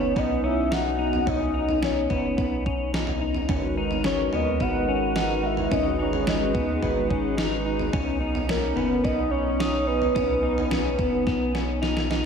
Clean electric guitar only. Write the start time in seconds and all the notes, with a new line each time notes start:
Already playing: B3
0.16 B3
0.44 C#4
0.71 D#4
0.98 D#4
1.27 C#4
1.54 D#4
1.82 C#4
2.10 B3
2.37 B3
2.66 C#4
2.94 D#4
3.21 D#4
3.49 C#4
3.77 D#4
4.05 C#4
4.33 B3
4.60 B3
4.88 C#4
5.16 D#4
5.43 D#4
5.71 C#4
5.99 D#4
6.27 C#4
6.54 B3
6.82 B3
7.10 C#4
7.37 D#4
7.66 D#4
7.93 C#4
8.21 D#4
8.49 C#4
8.76 B3
9.04 B3
9.31 C#4
9.60 D#4
9.87 D#4
10.15 C#4
10.43 D#4
10.71 C#4
10.99 B3
11.27 B3
11.55 C#4
11.82 D#4
12.10 D#4